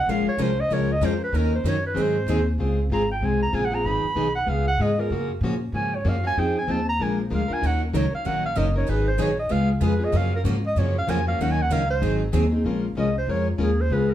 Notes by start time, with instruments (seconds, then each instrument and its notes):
Already playing: clarinet F#5
0.06 upright bass A#1, steel-string acoustic guitar F3 G#3 C#4 F4 A#4, clarinet F5
0.25 clarinet C#5, muted upright bass stroke
0.37 upright bass C2, steel-string acoustic guitar F3 G#3 C#4 F4 A#4
0.42 clarinet C5
0.60 clarinet D#5
0.69 upright bass C#2, steel-string acoustic guitar F3 G#3 C#4 F4 A#4
0.73 clarinet C#5
0.92 clarinet D#5
1.01 upright bass F2, steel-string acoustic guitar F3 G#3 C#4 F4 A#4
1.05 clarinet C5
1.24 clarinet B4
1.32 upright bass D#2, steel-string acoustic guitar D#3 F#3 C#4 D#4 A#4
1.37 clarinet A#4
1.55 clarinet C5
1.64 upright bass F#2, steel-string acoustic guitar D#3 F#3 C#4 D#4 A#4
1.68 clarinet C#5
1.86 clarinet B4
1.94 upright bass G#2, steel-string acoustic guitar D#3 F#3 C4 D#4 G#4
2.01 clarinet C5
2.27 upright bass D#2, steel-string acoustic guitar D#3 F#3 C4 D#4 G#4
2.58 upright bass C#2, steel-string acoustic guitar C#3 G#3 C4 F4 G#4
2.90 upright bass G#1, steel-string acoustic guitar C#3 G#3 C4 F4 G#4, clarinet A#5
3.11 clarinet G5
3.21 upright bass C2, steel-string acoustic guitar C#3 G#3 C4 F4 G#4
3.26 clarinet G#5
3.42 clarinet A#5
3.52 upright bass A#1, steel-string acoustic guitar C#3 G#3 C4 F4 G#4, clarinet G#5
3.65 clarinet F#5
3.70 steel-string acoustic guitar C4 F4 G#4, clarinet A#5
3.84 upright bass G#1, steel-string acoustic guitar D#3 F#3 B3 D#4 G#4, clarinet B5
4.03 muted upright bass stroke
4.15 upright bass B1, steel-string acoustic guitar D#3 F#3 B3 D#4 G#4
4.35 clarinet F#5
4.46 upright bass C#2, steel-string acoustic guitar C#3 G#3 B3 F4 G#4, clarinet F5
4.67 clarinet F#5
4.78 upright bass G#2, steel-string acoustic guitar C#3 G#3 B3 F4 G#4, clarinet D#5
4.99 steel-string acoustic guitar B3 F4 G#4, clarinet A#4
5.10 upright bass F#2, steel-string acoustic guitar C#3 F3 A#3 C#4 F#4
5.41 upright bass A#2, steel-string acoustic guitar C#3 F3 A#3 C#4 F#4
5.72 upright bass G#2, steel-string acoustic guitar C#3 F3 A#3 C#4 F#4, clarinet G#5
5.95 clarinet C#5
6.05 upright bass F#2, steel-string acoustic guitar C#3 F3 A#3 C#4 F#4
6.09 clarinet F5
6.24 steel-string acoustic guitar A#3 C#4 F#4, clarinet G#5
6.36 upright bass F2, steel-string acoustic guitar F3 C4 D#4 G#4, clarinet G5
6.58 clarinet G#5
6.67 upright bass D#2, steel-string acoustic guitar F3 C4 D#4 G#4
6.71 clarinet A5
6.89 clarinet A#5
6.99 upright bass A#1, steel-string acoustic guitar F3 G#3 D4 F4 A#4, clarinet G#5
7.21 clarinet C5
7.30 upright bass D2, steel-string acoustic guitar F3 G#3 D4 F4 A#4
7.34 clarinet F5
7.48 steel-string acoustic guitar D4 F4 A#4, muted upright bass stroke
7.53 clarinet G#5
7.61 upright bass D#2, steel-string acoustic guitar D#3 F#3 C#4 D#4 A#4
7.67 clarinet F#5
7.84 clarinet A#4
7.93 upright bass C#2, steel-string acoustic guitar D#3 F#3 C#4 D#4 A#4, clarinet C#5
8.12 clarinet F5, muted upright bass stroke
8.25 upright bass A#1, steel-string acoustic guitar D#3 F#3 C#4 D#4 A#4, clarinet F#5
8.46 clarinet F5
8.56 upright bass F#1, steel-string acoustic guitar D#3 F#3 C#4 D#4 A#4, clarinet D#5
8.76 steel-string acoustic guitar C#4 D#4 A#4, clarinet C#5
8.88 upright bass G#1, steel-string acoustic guitar D#3 F#3 B3 D#4 G#4, clarinet B4
9.08 clarinet C5
9.18 upright bass A#1, steel-string acoustic guitar D#3 F#3 B3 D#4 G#4
9.22 clarinet C#5
9.39 clarinet D#5
9.50 upright bass C#2, steel-string acoustic guitar C#3 G#3 B3 F4 G#4, clarinet F5
9.71 clarinet G#4
9.81 upright bass F2, steel-string acoustic guitar C#3 G#3 B3 F4 G#4, clarinet B4
9.99 steel-string acoustic guitar B3 F4 G#4
10.04 clarinet D#5
10.11 upright bass F#2, steel-string acoustic guitar C#3 F3 F#3 A#3 C#4 F4 F#4 A#4
10.17 clarinet F5
10.36 clarinet A#4
10.44 upright bass G#2, steel-string acoustic guitar C#3 F3 F#3 A#3 C#4 F4 F#4 A#4
10.67 clarinet D#5
10.76 upright bass F#2, steel-string acoustic guitar C#3 F3 F#3 A#3 C#4 F4 F#4 A#4, clarinet C#5
10.98 clarinet F5
11.07 upright bass F2, steel-string acoustic guitar C#3 F3 F#3 A#3 C#4 F4 F#4 A#4, clarinet G#5
11.27 steel-string acoustic guitar A#3 C#4 F#4, clarinet F5
11.39 upright bass D#2, steel-string acoustic guitar D#3 F#3 C#4 D#4 A#4, clarinet F#5
11.52 clarinet G#5
11.62 clarinet F#5
11.69 upright bass C#2, steel-string acoustic guitar D#3 F#3 C#4 D#4 A#4, clarinet F5
11.90 clarinet C5
12.01 upright bass G#1, steel-string acoustic guitar D#3 F#3 C4 D#4 G#4
12.32 upright bass D#2, steel-string acoustic guitar D#3 F#3 C4 D#4 G#4
12.51 steel-string acoustic guitar C4 D#4 G#4
12.64 upright bass A#1, steel-string acoustic guitar F3 G#3 C#4 F4 A#4
12.95 upright bass C2, steel-string acoustic guitar F3 G#3 C#4 F4 A#4, clarinet D#5
13.18 clarinet C5
13.27 upright bass F2, steel-string acoustic guitar F3 G#3 C#4 F4 A#4, clarinet C#5
13.50 clarinet F4
13.58 upright bass D#2, steel-string acoustic guitar F3 G#3 C#4 F4 A#4
13.62 clarinet G#4
13.81 clarinet C5
13.90 upright bass C#2, steel-string acoustic guitar C#3 G#3 B3 F4 G#4, clarinet B4
14.11 clarinet A#4